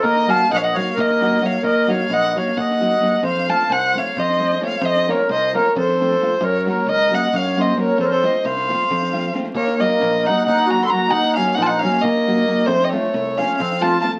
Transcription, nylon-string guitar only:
\new Staff \with { instrumentName = "Nylon-string guitar" } { \time 7/8 \tempo 4 = 133 r8 <ges bes ees' ges'>8 r8 <ges bes ees' ges'>8 r8 <ges bes ees' ges'>8 <ges bes ees' ges'>8 | r8 <ges bes ees' ges'>8 r8 <ges bes ees' ges'>8 r8 <ges bes ees' ges'>8 <ges bes ees' ges'>8 | r8 <f a c' f'>8 r8 <f a c' f'>8 r8 <f a c' f'>8 <f a c' f'>8 | r8 <f a c' f'>8 r8 <f a c' f'>8 r8 <f a c' f'>8 <f a c' f'>8 |
r8 <ges bes des' ges'>8 r8 <ges bes des' ges'>8 r8 <ges bes des' ges'>8 <ges bes des' ges'>8 | r8 <f a c' f'>8 r8 <f a c' f'>8 r8 <f a c' f'>8 <f a c' f'>8 | r8 <ges bes ees' ges'>8 r8 <ges bes ees' ges'>8 r8 <ges bes ees' ges'>8 <ges bes ees' ges'>8 | r8 <ges bes ees' ges'>8 r8 <ges bes ees' ges'>8 r8 <ges bes ees' ges'>8 <ges bes ees' ges'>8 |
r8 <f a c' f'>8 r8 <f a c' f'>8 r8 <f a c' f'>8 <f a c' f'>8 | }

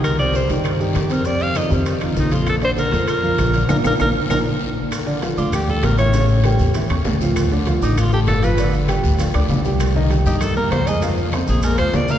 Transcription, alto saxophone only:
\new Staff \with { instrumentName = "Alto saxophone" } { \time 4/4 \key bes \major \tempo 4 = 197 bes'8 d''8 c''8 r4. g'8 bes'8 | d''8 f''8 ees''8 r4. ees'8 f'8 | a'8 c''8 bes'4 bes'2 | bes'8 bes'8 bes'8 r8 bes'8 r4. |
\key g \minor r4. f'8 g'8 a'8 bes'8 cis''8~ | cis''8 r2. r8 | r4. ees'8 f'8 g'8 a'8 b'8~ | b'8 r2. r8 |
r4. g'16. aes'32 a'8 bes'8 c''8 ees''8 | r4. aes'8 bes'8 c''8 d''8 f''8 | }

